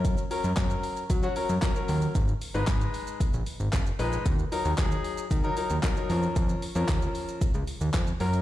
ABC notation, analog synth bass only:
X:1
M:4/4
L:1/16
Q:1/4=114
K:Bbphr
V:1 name="Analog synth bass" clef=bass
G,,2 z G,, G,,2 z2 G,2 z G,, z2 E,,2 | A,,,2 z A,,, A,,,2 z3 B,,, z A,,, G,,,2 B,,,2 | E,,2 z E,, E,,2 z2 E,2 z E,, z2 F,,2 | F,,2 z F,, E,,2 z3 D,, z E,, F,,2 G,,2 |]